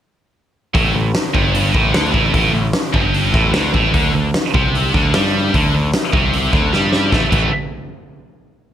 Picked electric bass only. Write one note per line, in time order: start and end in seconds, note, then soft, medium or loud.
0.74 0.93 A1 medium
0.94 1.13 A1 medium
1.35 1.72 G1 medium
1.75 1.92 A1 loud
1.93 2.12 D2 medium
2.14 2.33 A1 medium
2.34 2.52 A1 medium
2.53 2.72 A1 medium
2.94 3.31 G1 medium
3.34 3.52 A1 loud
3.52 3.72 D2 loud
3.73 3.92 A1 loud
3.94 4.13 D2 medium
4.14 4.32 D2 medium
4.54 4.91 C2 loud
4.94 5.12 D2 loud
5.13 5.50 G2 medium
5.54 5.72 D2 medium
5.74 5.92 D2 medium
6.13 6.50 C2 loud
6.53 6.71 D2 loud
6.74 7.10 G2 medium
7.12 7.23 A1 medium
7.32 7.50 A1 medium